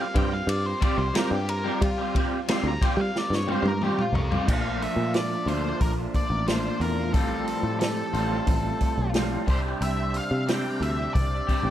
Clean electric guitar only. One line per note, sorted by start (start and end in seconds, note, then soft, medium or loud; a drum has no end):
0.14 0.31 G3 medium
0.14 0.30 C4 medium
0.14 0.30 F4 medium
0.14 0.29 G4 medium
0.31 muted clean electric guitar stroke medium
0.48 muted clean electric guitar stroke soft
0.80 1.02 G3 medium
0.80 1.03 C4 loud
0.80 1.03 F4 loud
0.80 1.03 G4 loud
1.13 1.35 G3 medium
1.13 1.36 C4 medium
1.13 1.36 F4 medium
1.13 1.36 G4 loud
1.64 1.86 G3 medium
1.64 1.86 C4 medium
1.64 1.86 F4 medium
1.64 1.86 G4 medium
1.98 2.13 G3 medium
1.98 2.14 C4 medium
1.98 2.14 F4 medium
1.98 2.14 G4 medium
2.14 2.36 G3 medium
2.14 2.36 C4 medium
2.14 2.36 F4 loud
2.14 2.37 G4 medium
2.48 2.69 G3 medium
2.48 2.69 C4 medium
2.48 2.70 F4 medium
2.48 2.70 G4 medium
2.81 2.98 G3 medium
2.81 2.98 C4 medium
2.81 2.98 F4 medium
2.81 2.97 G4 loud
2.98 muted clean electric guitar stroke soft
3.16 muted clean electric guitar stroke soft
3.47 3.69 G3 medium
3.47 3.69 C4 medium
3.47 3.69 F4 loud
3.47 3.69 G4 loud
3.82 4.03 G3 medium
3.82 4.03 C4 medium
3.82 4.03 F4 medium
3.82 4.04 G4 medium
4.31 4.47 G3 medium
4.31 4.48 C4 medium
4.31 4.48 F4 medium
4.31 4.48 G4 loud
4.46 5.45 A#2 medium
4.46 5.49 F3 medium
4.46 5.49 A3 medium
4.46 5.46 D4 medium
4.51 5.47 F4 medium
5.47 6.45 A#2 medium
5.47 6.46 F3 medium
5.47 6.46 A3 medium
5.47 6.46 D4 medium
5.47 6.45 F4 medium
6.47 7.11 A#2 medium
6.47 7.12 F3 medium
6.47 7.13 A3 medium
6.47 7.13 D4 medium
6.47 7.14 F4 medium
7.12 8.11 A2 medium
7.12 8.12 F3 medium
7.12 8.15 G3 medium
7.12 8.13 C4 loud
7.16 8.12 F4 medium
8.13 9.11 A2 medium
8.13 9.13 F3 medium
8.13 9.14 G3 medium
8.13 9.15 C4 medium
8.13 9.12 F4 medium
9.13 9.45 A2 medium
9.13 9.45 F3 medium
9.13 9.47 G3 medium
9.13 9.47 C4 medium
9.13 9.47 F4 medium
9.46 10.45 C3 medium
9.46 10.47 G3 medium
9.46 10.48 C4 medium
9.46 10.46 D4 medium
9.46 10.49 G4 medium
10.46 11.45 C3 medium
10.46 11.45 G3 medium
10.46 11.46 C4 medium
10.46 11.47 D4 medium
10.46 11.46 G4 medium
11.47 11.70 C3 medium
11.47 11.70 G3 medium
11.47 11.70 C4 medium
11.47 11.70 D4 medium
11.47 11.70 G4 medium